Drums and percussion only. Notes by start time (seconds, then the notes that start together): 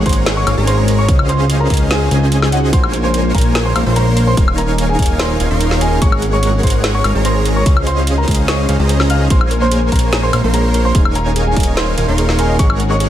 0.06 kick, closed hi-hat
0.09 closed hi-hat
0.13 closed hi-hat
0.26 snare, closed hi-hat
0.47 closed hi-hat, high woodblock
0.67 closed hi-hat
0.88 closed hi-hat
1.09 kick, closed hi-hat
1.19 high woodblock
1.29 closed hi-hat
1.50 closed hi-hat
1.70 kick, closed hi-hat
1.74 closed hi-hat
1.77 closed hi-hat
1.91 snare, closed hi-hat
2.11 closed hi-hat
2.32 closed hi-hat
2.42 snare, high woodblock
2.52 closed hi-hat
2.73 kick, closed hi-hat
2.84 high woodblock
2.93 closed hi-hat
3.14 closed hi-hat
3.35 kick, closed hi-hat
3.38 closed hi-hat
3.41 closed hi-hat
3.55 snare, closed hi-hat
3.76 closed hi-hat, high woodblock
3.96 closed hi-hat
4.17 closed hi-hat
4.37 kick, closed hi-hat
4.48 high woodblock
4.58 closed hi-hat
4.78 closed hi-hat
4.99 kick, closed hi-hat
5.02 closed hi-hat
5.06 closed hi-hat
5.19 snare, closed hi-hat
5.40 closed hi-hat
5.61 closed hi-hat
5.71 snare
5.81 closed hi-hat
6.02 kick, closed hi-hat
6.12 high woodblock
6.22 closed hi-hat
6.43 closed hi-hat
6.63 kick, closed hi-hat
6.67 closed hi-hat
6.70 closed hi-hat
6.84 snare, closed hi-hat
7.04 closed hi-hat, high woodblock
7.25 closed hi-hat
7.45 closed hi-hat
7.66 kick, closed hi-hat
7.77 high woodblock
7.87 closed hi-hat
8.07 closed hi-hat
8.28 kick, closed hi-hat
8.31 closed hi-hat
8.35 closed hi-hat
8.48 snare, closed hi-hat
8.69 closed hi-hat
8.89 closed hi-hat
9.00 snare, high woodblock
9.10 closed hi-hat
9.30 kick, closed hi-hat
9.41 high woodblock
9.51 closed hi-hat
9.72 closed hi-hat
9.92 kick, closed hi-hat
9.96 closed hi-hat
9.99 closed hi-hat
10.13 snare, closed hi-hat
10.33 closed hi-hat, high woodblock
10.54 closed hi-hat
10.74 closed hi-hat
10.95 kick, closed hi-hat
11.05 high woodblock
11.15 closed hi-hat
11.36 closed hi-hat
11.56 kick, closed hi-hat
11.60 closed hi-hat
11.63 closed hi-hat
11.77 snare, closed hi-hat
11.98 closed hi-hat
12.18 closed hi-hat
12.29 snare
12.39 closed hi-hat
12.59 kick, closed hi-hat
12.70 high woodblock
12.80 closed hi-hat
13.00 closed hi-hat